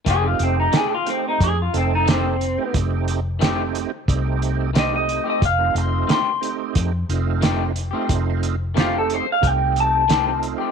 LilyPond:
<<
  \new Staff \with { instrumentName = "Clean electric guitar" } { \time 4/4 \key f \mixolydian \tempo 4 = 90 aes'16 f'16 c'16 ees'16 aes'16 f'16 c'16 ees'16 aes'16 f'16 c'16 ees'16 c'4 | r2. ees''16 ees''8 ees''16 | f''8 c'''8 c'''4 r2 | r4 f'16 a'16 c''16 f''16 g''8 a''4 r8 | }
  \new Staff \with { instrumentName = "Tonewheel organ" } { \time 4/4 \key f \mixolydian r16 <a c' ees' g'>4 r16 <a c' ees' g'>8. r16 <a c' ees' a'>4 r16 <a c' ees' g'>16~ | <a c' ees' g'>8. r16 <a c' ees' g'>8. r16 <a c' ees' g'>4 r16 <a c' ees' g'>8. | r16 <a c' ees' f'>4 r16 <a c' ees' g'>8. r16 <a c' ees' f'>4 r16 <a c' ees' f'>16~ | <a c' ees' f'>8. r16 <a c' ees' g'>8. r16 <a c' ees' g'>4 r16 <a c' ees' f'>8. | }
  \new Staff \with { instrumentName = "Clean electric guitar" } { \time 4/4 \key f \mixolydian <ees a c' g'>16 r8. <ees a c' g'>16 r4. r16 <ees a c' g'>16 r8. | r4 <ees a c' g'>16 r4. r16 <ees a c' g'>16 r8 <a c' g'>16 | r4 <ees a c' g'>16 r4. r16 <ees a c' g'>16 r8 <a c' g'>16 | r4 <ees a c' g'>16 r4. r16 <ees a c' g'>16 r8 <a c' g'>16 | }
  \new Staff \with { instrumentName = "Fingered electric bass" } { \clef bass \time 4/4 \key f \mixolydian f,,8 f,,8 r4 f,8 f,,4. | f,,2 c,2 | f,,8 f,,8 r4 f,8 f,,4. | f,,2 c,2 | }
  \new DrumStaff \with { instrumentName = "Drums" } \drummode { \time 4/4 <hh bd>8 hh8 <hh sn>8 hh8 <hh bd>8 hh8 <hh sn>8 hh8 | <hh bd>8 hh8 <hh sn>8 hh8 <hh bd>8 hh8 <hh sn>8 hh8 | <hh bd>8 hh8 <hh sn>8 hh8 <hh bd>8 hh8 <hh sn>8 hh8 | <hh bd>8 hh8 <hh sn>8 hh8 <hh bd>8 hh8 <hh sn>8 hh8 | }
>>